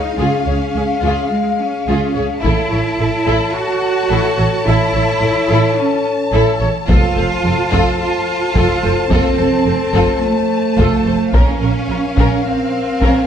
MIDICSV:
0, 0, Header, 1, 8, 480
1, 0, Start_track
1, 0, Tempo, 557621
1, 167, Time_signature, 4, 2, 24, 8
1, 11421, End_track
2, 0, Start_track
2, 0, Title_t, "Violin section"
2, 0, Program_c, 0, 48
2, 0, Note_on_c, 0, 77, 39
2, 2057, Note_off_c, 0, 77, 0
2, 2102, Note_on_c, 0, 81, 47
2, 5916, Note_off_c, 0, 81, 0
2, 5926, Note_on_c, 0, 81, 55
2, 9725, Note_off_c, 0, 81, 0
2, 9751, Note_on_c, 0, 77, 55
2, 11421, Note_off_c, 0, 77, 0
2, 11421, End_track
3, 0, Start_track
3, 0, Title_t, "French horn section"
3, 0, Program_c, 1, 60
3, 0, Note_on_c, 1, 68, 47
3, 0, Note_on_c, 1, 77, 47
3, 2057, Note_off_c, 1, 68, 0
3, 2058, Note_off_c, 1, 77, 0
3, 2098, Note_on_c, 1, 69, 54
3, 2105, Note_on_c, 1, 73, 57
3, 5789, Note_off_c, 1, 69, 0
3, 5789, Note_off_c, 1, 73, 0
3, 5935, Note_on_c, 1, 72, 69
3, 5938, Note_on_c, 1, 69, 62
3, 9730, Note_off_c, 1, 72, 0
3, 9731, Note_off_c, 1, 69, 0
3, 9762, Note_on_c, 1, 77, 61
3, 9770, Note_on_c, 1, 70, 64
3, 11421, Note_off_c, 1, 70, 0
3, 11421, Note_off_c, 1, 77, 0
3, 11421, End_track
4, 0, Start_track
4, 0, Title_t, "Viola section"
4, 0, Program_c, 2, 48
4, 162, Note_on_c, 2, 68, 50
4, 388, Note_off_c, 2, 68, 0
4, 412, Note_on_c, 2, 68, 31
4, 480, Note_off_c, 2, 68, 0
4, 657, Note_on_c, 2, 68, 34
4, 725, Note_off_c, 2, 68, 0
4, 893, Note_on_c, 2, 68, 45
4, 1118, Note_off_c, 2, 68, 0
4, 1620, Note_on_c, 2, 68, 47
4, 1841, Note_off_c, 2, 68, 0
4, 1862, Note_on_c, 2, 68, 41
4, 1931, Note_off_c, 2, 68, 0
4, 2102, Note_on_c, 2, 69, 49
4, 2321, Note_off_c, 2, 69, 0
4, 2342, Note_on_c, 2, 69, 32
4, 2411, Note_off_c, 2, 69, 0
4, 2580, Note_on_c, 2, 69, 38
4, 2649, Note_off_c, 2, 69, 0
4, 2812, Note_on_c, 2, 69, 54
4, 3034, Note_off_c, 2, 69, 0
4, 3535, Note_on_c, 2, 69, 58
4, 3756, Note_off_c, 2, 69, 0
4, 3777, Note_on_c, 2, 69, 48
4, 3846, Note_off_c, 2, 69, 0
4, 4014, Note_on_c, 2, 69, 56
4, 4235, Note_off_c, 2, 69, 0
4, 4253, Note_on_c, 2, 69, 38
4, 4322, Note_off_c, 2, 69, 0
4, 4495, Note_on_c, 2, 69, 38
4, 4564, Note_off_c, 2, 69, 0
4, 4732, Note_on_c, 2, 69, 57
4, 4954, Note_off_c, 2, 69, 0
4, 5452, Note_on_c, 2, 69, 67
4, 5673, Note_off_c, 2, 69, 0
4, 5697, Note_on_c, 2, 69, 46
4, 5766, Note_off_c, 2, 69, 0
4, 5932, Note_on_c, 2, 69, 57
4, 6152, Note_off_c, 2, 69, 0
4, 6177, Note_on_c, 2, 69, 39
4, 6246, Note_off_c, 2, 69, 0
4, 6414, Note_on_c, 2, 69, 46
4, 6483, Note_off_c, 2, 69, 0
4, 6655, Note_on_c, 2, 69, 59
4, 6873, Note_off_c, 2, 69, 0
4, 7371, Note_on_c, 2, 69, 71
4, 7589, Note_off_c, 2, 69, 0
4, 7608, Note_on_c, 2, 69, 52
4, 7677, Note_off_c, 2, 69, 0
4, 7842, Note_on_c, 2, 69, 70
4, 8064, Note_off_c, 2, 69, 0
4, 8085, Note_on_c, 2, 69, 41
4, 8154, Note_off_c, 2, 69, 0
4, 8318, Note_on_c, 2, 69, 42
4, 8387, Note_off_c, 2, 69, 0
4, 8559, Note_on_c, 2, 69, 64
4, 8783, Note_off_c, 2, 69, 0
4, 9290, Note_on_c, 2, 69, 56
4, 9508, Note_off_c, 2, 69, 0
4, 9517, Note_on_c, 2, 69, 45
4, 9586, Note_off_c, 2, 69, 0
4, 9763, Note_on_c, 2, 70, 64
4, 9985, Note_off_c, 2, 70, 0
4, 10003, Note_on_c, 2, 70, 39
4, 10072, Note_off_c, 2, 70, 0
4, 10247, Note_on_c, 2, 70, 42
4, 10316, Note_off_c, 2, 70, 0
4, 10484, Note_on_c, 2, 70, 59
4, 10706, Note_off_c, 2, 70, 0
4, 11210, Note_on_c, 2, 70, 56
4, 11421, Note_off_c, 2, 70, 0
4, 11421, End_track
5, 0, Start_track
5, 0, Title_t, "Violin section"
5, 0, Program_c, 3, 48
5, 157, Note_on_c, 3, 65, 43
5, 386, Note_off_c, 3, 65, 0
5, 399, Note_on_c, 3, 73, 31
5, 468, Note_off_c, 3, 73, 0
5, 655, Note_on_c, 3, 68, 34
5, 724, Note_off_c, 3, 68, 0
5, 907, Note_on_c, 3, 65, 49
5, 1125, Note_off_c, 3, 65, 0
5, 1616, Note_on_c, 3, 65, 44
5, 1838, Note_off_c, 3, 65, 0
5, 1847, Note_on_c, 3, 73, 44
5, 1916, Note_off_c, 3, 73, 0
5, 2080, Note_on_c, 3, 64, 53
5, 2310, Note_off_c, 3, 64, 0
5, 2334, Note_on_c, 3, 73, 36
5, 2403, Note_off_c, 3, 73, 0
5, 2581, Note_on_c, 3, 69, 38
5, 2650, Note_off_c, 3, 69, 0
5, 2812, Note_on_c, 3, 64, 60
5, 3035, Note_off_c, 3, 64, 0
5, 3533, Note_on_c, 3, 64, 51
5, 3754, Note_off_c, 3, 64, 0
5, 3775, Note_on_c, 3, 73, 47
5, 3843, Note_off_c, 3, 73, 0
5, 4024, Note_on_c, 3, 64, 52
5, 4240, Note_off_c, 3, 64, 0
5, 4261, Note_on_c, 3, 73, 40
5, 4330, Note_off_c, 3, 73, 0
5, 4500, Note_on_c, 3, 69, 44
5, 4569, Note_off_c, 3, 69, 0
5, 4737, Note_on_c, 3, 64, 60
5, 4957, Note_off_c, 3, 64, 0
5, 5445, Note_on_c, 3, 64, 57
5, 5669, Note_off_c, 3, 64, 0
5, 5676, Note_on_c, 3, 73, 51
5, 5745, Note_off_c, 3, 73, 0
5, 5920, Note_on_c, 3, 65, 64
5, 6145, Note_off_c, 3, 65, 0
5, 6160, Note_on_c, 3, 72, 38
5, 6228, Note_off_c, 3, 72, 0
5, 6402, Note_on_c, 3, 69, 41
5, 6471, Note_off_c, 3, 69, 0
5, 6642, Note_on_c, 3, 65, 74
5, 6866, Note_off_c, 3, 65, 0
5, 7371, Note_on_c, 3, 65, 69
5, 7589, Note_off_c, 3, 65, 0
5, 7609, Note_on_c, 3, 72, 58
5, 7678, Note_off_c, 3, 72, 0
5, 7844, Note_on_c, 3, 65, 70
5, 8066, Note_off_c, 3, 65, 0
5, 8068, Note_on_c, 3, 72, 46
5, 8137, Note_off_c, 3, 72, 0
5, 8325, Note_on_c, 3, 69, 40
5, 8394, Note_off_c, 3, 69, 0
5, 8555, Note_on_c, 3, 65, 62
5, 8781, Note_off_c, 3, 65, 0
5, 9275, Note_on_c, 3, 65, 58
5, 9501, Note_off_c, 3, 65, 0
5, 9514, Note_on_c, 3, 72, 54
5, 9583, Note_off_c, 3, 72, 0
5, 9760, Note_on_c, 3, 61, 56
5, 9983, Note_off_c, 3, 61, 0
5, 9987, Note_on_c, 3, 70, 43
5, 10056, Note_off_c, 3, 70, 0
5, 10230, Note_on_c, 3, 65, 36
5, 10299, Note_off_c, 3, 65, 0
5, 10489, Note_on_c, 3, 61, 59
5, 10708, Note_off_c, 3, 61, 0
5, 11190, Note_on_c, 3, 61, 50
5, 11421, Note_off_c, 3, 61, 0
5, 11421, End_track
6, 0, Start_track
6, 0, Title_t, "Cello section"
6, 0, Program_c, 4, 48
6, 0, Note_on_c, 4, 63, 59
6, 157, Note_on_c, 4, 61, 56
6, 164, Note_off_c, 4, 63, 0
6, 1109, Note_off_c, 4, 61, 0
6, 1130, Note_on_c, 4, 56, 51
6, 1371, Note_off_c, 4, 56, 0
6, 1372, Note_on_c, 4, 61, 56
6, 2093, Note_off_c, 4, 61, 0
6, 2094, Note_on_c, 4, 64, 65
6, 3032, Note_off_c, 4, 64, 0
6, 3051, Note_on_c, 4, 66, 68
6, 4008, Note_on_c, 4, 64, 76
6, 4009, Note_off_c, 4, 66, 0
6, 4949, Note_off_c, 4, 64, 0
6, 4966, Note_on_c, 4, 61, 63
6, 5207, Note_off_c, 4, 61, 0
6, 5921, Note_on_c, 4, 65, 83
6, 6847, Note_off_c, 4, 65, 0
6, 6883, Note_on_c, 4, 65, 82
6, 7821, Note_off_c, 4, 65, 0
6, 7836, Note_on_c, 4, 60, 80
6, 8779, Note_off_c, 4, 60, 0
6, 8788, Note_on_c, 4, 57, 67
6, 9747, Note_on_c, 4, 61, 77
6, 9754, Note_off_c, 4, 57, 0
6, 10714, Note_off_c, 4, 61, 0
6, 10714, Note_on_c, 4, 60, 67
6, 11421, Note_off_c, 4, 60, 0
6, 11421, End_track
7, 0, Start_track
7, 0, Title_t, "Double bass section"
7, 0, Program_c, 5, 48
7, 161, Note_on_c, 5, 37, 48
7, 230, Note_off_c, 5, 37, 0
7, 402, Note_on_c, 5, 37, 36
7, 471, Note_off_c, 5, 37, 0
7, 643, Note_on_c, 5, 37, 33
7, 712, Note_off_c, 5, 37, 0
7, 883, Note_on_c, 5, 37, 46
7, 952, Note_off_c, 5, 37, 0
7, 1617, Note_on_c, 5, 37, 48
7, 1686, Note_off_c, 5, 37, 0
7, 1859, Note_on_c, 5, 37, 38
7, 1928, Note_off_c, 5, 37, 0
7, 2095, Note_on_c, 5, 33, 52
7, 2164, Note_off_c, 5, 33, 0
7, 2330, Note_on_c, 5, 33, 40
7, 2399, Note_off_c, 5, 33, 0
7, 2571, Note_on_c, 5, 33, 38
7, 2640, Note_off_c, 5, 33, 0
7, 2809, Note_on_c, 5, 33, 54
7, 2878, Note_off_c, 5, 33, 0
7, 3526, Note_on_c, 5, 33, 55
7, 3595, Note_off_c, 5, 33, 0
7, 3771, Note_on_c, 5, 33, 43
7, 3840, Note_off_c, 5, 33, 0
7, 4017, Note_on_c, 5, 33, 60
7, 4085, Note_off_c, 5, 33, 0
7, 4254, Note_on_c, 5, 33, 43
7, 4323, Note_off_c, 5, 33, 0
7, 4493, Note_on_c, 5, 33, 43
7, 4562, Note_off_c, 5, 33, 0
7, 4731, Note_on_c, 5, 33, 58
7, 4800, Note_off_c, 5, 33, 0
7, 5446, Note_on_c, 5, 33, 62
7, 5514, Note_off_c, 5, 33, 0
7, 5687, Note_on_c, 5, 33, 45
7, 5756, Note_off_c, 5, 33, 0
7, 5930, Note_on_c, 5, 29, 65
7, 5999, Note_off_c, 5, 29, 0
7, 6166, Note_on_c, 5, 29, 50
7, 6235, Note_off_c, 5, 29, 0
7, 6409, Note_on_c, 5, 29, 45
7, 6478, Note_off_c, 5, 29, 0
7, 6652, Note_on_c, 5, 29, 63
7, 6720, Note_off_c, 5, 29, 0
7, 7364, Note_on_c, 5, 29, 70
7, 7432, Note_off_c, 5, 29, 0
7, 7606, Note_on_c, 5, 29, 47
7, 7675, Note_off_c, 5, 29, 0
7, 7841, Note_on_c, 5, 29, 65
7, 7910, Note_off_c, 5, 29, 0
7, 8081, Note_on_c, 5, 29, 50
7, 8150, Note_off_c, 5, 29, 0
7, 8320, Note_on_c, 5, 29, 49
7, 8389, Note_off_c, 5, 29, 0
7, 8555, Note_on_c, 5, 29, 64
7, 8624, Note_off_c, 5, 29, 0
7, 9275, Note_on_c, 5, 29, 68
7, 9344, Note_off_c, 5, 29, 0
7, 9512, Note_on_c, 5, 29, 45
7, 9581, Note_off_c, 5, 29, 0
7, 9751, Note_on_c, 5, 34, 62
7, 9819, Note_off_c, 5, 34, 0
7, 9996, Note_on_c, 5, 34, 44
7, 10065, Note_off_c, 5, 34, 0
7, 10239, Note_on_c, 5, 34, 44
7, 10308, Note_off_c, 5, 34, 0
7, 10479, Note_on_c, 5, 34, 51
7, 10548, Note_off_c, 5, 34, 0
7, 11203, Note_on_c, 5, 34, 51
7, 11272, Note_off_c, 5, 34, 0
7, 11421, End_track
8, 0, Start_track
8, 0, Title_t, "Taiko and cinematic ensemble drums"
8, 2100, Note_on_c, 9, 41, 60
8, 2186, Note_off_c, 9, 41, 0
8, 2819, Note_on_c, 9, 41, 30
8, 2905, Note_off_c, 9, 41, 0
8, 5931, Note_on_c, 9, 41, 87
8, 6017, Note_off_c, 9, 41, 0
8, 6649, Note_on_c, 9, 41, 63
8, 6735, Note_off_c, 9, 41, 0
8, 7365, Note_on_c, 9, 41, 69
8, 7451, Note_off_c, 9, 41, 0
8, 7841, Note_on_c, 9, 41, 84
8, 7927, Note_off_c, 9, 41, 0
8, 8565, Note_on_c, 9, 41, 61
8, 8651, Note_off_c, 9, 41, 0
8, 9285, Note_on_c, 9, 41, 71
8, 9371, Note_off_c, 9, 41, 0
8, 9762, Note_on_c, 9, 41, 91
8, 9848, Note_off_c, 9, 41, 0
8, 10478, Note_on_c, 9, 41, 69
8, 10564, Note_off_c, 9, 41, 0
8, 11203, Note_on_c, 9, 41, 64
8, 11289, Note_off_c, 9, 41, 0
8, 11421, End_track
0, 0, End_of_file